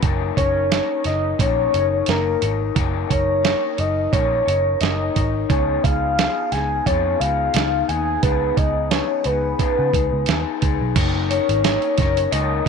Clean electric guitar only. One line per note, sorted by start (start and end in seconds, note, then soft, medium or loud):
0.01 0.36 F#3 medium
0.01 0.37 A#3 medium
0.01 0.37 D#4 medium
0.01 0.37 A#4 medium
0.01 0.35 C#5 medium
0.36 0.70 D#4 soft
0.36 0.71 A#4 soft
0.36 0.71 C#5 medium
0.70 1.05 A#3 soft
0.70 1.05 D#4 medium
0.70 1.05 A#4 medium
0.70 1.03 C#5 medium
1.04 1.39 D#4 soft
1.04 1.39 A#4 soft
1.04 1.39 C#5 soft
1.39 1.73 F#3 medium
1.39 1.74 A#3 medium
1.39 1.74 D#4 medium
1.39 1.73 A#4 medium
1.39 1.71 C#5 medium
1.72 2.07 D#4 soft
1.72 2.08 A#4 soft
1.72 2.07 C#5 medium
2.07 2.42 A#3 medium
2.07 2.42 D#4 medium
2.07 2.42 A#4 medium
2.07 2.40 C#5 medium
2.41 2.75 D#4 soft
2.41 2.75 A#4 soft
2.41 2.76 C#5 soft
2.75 3.10 F#3 medium
2.75 3.10 A#3 medium
2.75 3.10 D#4 medium
2.75 3.10 A#4 medium
2.75 3.08 C#5 medium
3.09 3.43 D#4 soft
3.09 3.43 A#4 soft
3.09 3.44 C#5 medium
3.43 3.78 A#3 soft
3.43 3.78 D#4 medium
3.43 3.78 A#4 medium
3.43 3.76 C#5 medium
3.77 4.12 D#4 soft
3.77 4.12 A#4 soft
3.77 4.12 C#5 soft
4.12 4.47 F#3 medium
4.12 4.47 A#3 medium
4.12 4.47 D#4 medium
4.12 4.46 A#4 medium
4.12 4.44 C#5 medium
4.46 4.80 D#4 soft
4.46 4.81 A#4 soft
4.46 4.81 C#5 soft
4.80 5.15 A#3 medium
4.80 5.16 D#4 medium
4.80 5.15 A#4 medium
4.80 5.13 C#5 medium
5.14 5.49 D#4 soft
5.14 5.50 A#4 soft
5.14 5.49 C#5 soft
5.49 5.83 C#3 medium
5.49 5.84 F3 medium
5.49 5.84 B3 medium
5.49 5.84 D#4 medium
5.49 5.82 G#4 medium
5.83 6.18 B3 soft
5.83 6.18 D#4 soft
5.83 6.17 G#4 medium
6.18 6.52 F3 soft
6.18 6.53 B3 medium
6.18 6.53 D#4 medium
6.18 6.51 G#4 medium
6.52 6.87 B3 soft
6.52 6.87 D#4 soft
6.52 6.86 G#4 soft
6.87 7.21 C#3 medium
6.87 7.21 F3 medium
6.87 7.21 B3 medium
6.87 7.21 D#4 medium
6.87 7.19 G#4 medium
7.21 7.54 B3 soft
7.21 7.55 D#4 soft
7.21 7.55 G#4 soft
7.54 7.88 F3 soft
7.54 7.89 B3 medium
7.54 7.89 D#4 medium
7.54 7.87 G#4 medium
7.88 8.23 B3 soft
7.88 8.24 D#4 soft
7.88 8.23 G#4 soft
8.23 8.57 C#3 medium
8.23 8.57 F3 medium
8.23 8.58 B3 medium
8.23 8.57 D#4 medium
8.23 8.55 G#4 medium
8.56 8.91 B3 soft
8.56 8.92 D#4 soft
8.56 8.91 G#4 soft
8.91 9.25 F3 medium
8.91 9.26 B3 medium
8.91 9.25 D#4 medium
8.91 9.24 G#4 medium
9.25 9.58 B3 soft
9.25 9.59 D#4 soft
9.25 9.59 G#4 soft
9.59 9.93 C#3 medium
9.59 9.94 F3 medium
9.59 9.94 B3 medium
9.59 9.93 D#4 medium
9.59 9.91 G#4 medium
9.93 10.27 B3 soft
9.93 10.28 D#4 soft
9.93 10.27 G#4 soft
10.27 10.62 F3 medium
10.27 10.62 B3 medium
10.27 10.62 D#4 medium
10.27 10.60 G#4 medium
10.61 10.95 B3 soft
10.61 10.95 D#4 medium
10.61 10.96 G#4 medium
10.95 11.30 F#3 medium
10.95 11.30 A#3 medium
10.95 11.30 D#4 medium
10.95 11.29 A#4 medium
10.95 11.27 C#5 loud
11.29 11.62 D#4 soft
11.29 11.64 A#4 medium
11.29 11.64 C#5 medium
11.62 11.98 A#3 medium
11.62 11.98 D#4 medium
11.62 11.98 A#4 medium
11.62 11.96 C#5 medium
11.97 12.31 D#4 soft
11.97 12.32 A#4 medium
11.97 12.32 C#5 soft
12.31 12.66 F#3 medium
12.31 12.66 A#3 medium
12.31 12.66 D#4 medium
12.31 12.65 A#4 medium
12.31 12.63 C#5 medium
12.64 12.68 C#5 medium